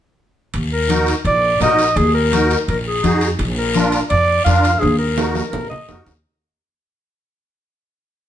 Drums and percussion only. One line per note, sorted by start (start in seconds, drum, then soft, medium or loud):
0.54 high conga soft
0.54 high timbale medium
0.54 long guiro medium
0.89 high conga medium
0.89 high timbale medium
0.89 short guiro medium
1.06 high timbale medium
1.06 short guiro medium
1.25 high conga soft
1.25 high timbale medium
1.25 long guiro medium
1.60 high conga medium
1.60 high timbale medium
1.60 low timbale medium
1.60 short guiro medium
1.79 high timbale medium
1.79 short guiro medium
1.97 high conga soft
1.97 high timbale medium
1.97 long guiro medium
2.33 high conga medium
2.33 high timbale medium
2.33 short guiro medium
2.50 high timbale medium
2.50 short guiro medium
2.68 high conga soft
2.68 high timbale medium
2.68 long guiro medium
3.04 high conga medium
3.04 high timbale medium
3.04 short guiro medium
3.21 high timbale medium
3.21 short guiro medium
3.39 high conga soft
3.39 high timbale medium
3.39 long guiro medium
3.75 high conga medium
3.75 high timbale medium
3.75 short guiro medium
3.92 high timbale medium
3.92 short guiro medium
4.10 high conga soft
4.10 high timbale medium
4.10 long guiro medium
4.46 high conga medium
4.46 high timbale medium
4.46 short guiro medium
4.63 high timbale medium
4.63 short guiro medium
4.81 high conga soft
4.81 high timbale medium
4.81 long guiro medium
5.18 high conga medium
5.18 low timbale loud
5.18 short guiro medium
5.35 high conga medium
5.35 low timbale medium
5.35 short guiro medium
5.53 low conga medium
5.53 low timbale medium
5.53 long guiro medium
5.71 low conga medium
5.71 low timbale medium
5.89 low conga medium
5.89 low timbale loud
5.89 short guiro medium
6.07 low conga medium
6.07 low timbale medium
6.07 short guiro medium